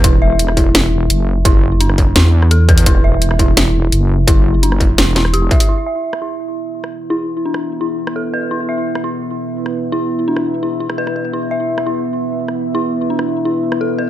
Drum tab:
HH |x---x-o-x---x---|x---x-o-x---x-oo|x---x-o-x---x---|x---x-o-x-x-o-oo|
SD |-----r--o-------|-----r--o--r----|-----r--o-------|-----r--o-or----|
BD |o-----o---------|o-----o-------o-|o-----o---------|o-----o-------o-|

HH |----------------|----------------|----------------|----------------|
SD |-----r-------r--|-----r-----r----|-----r-------r--|-----r-----r-r--|
BD |----------------|----------------|----------------|----------------|

HH |----------------|----------------|
SD |-----r-------r--|-----r-----r----|
BD |----------------|----------------|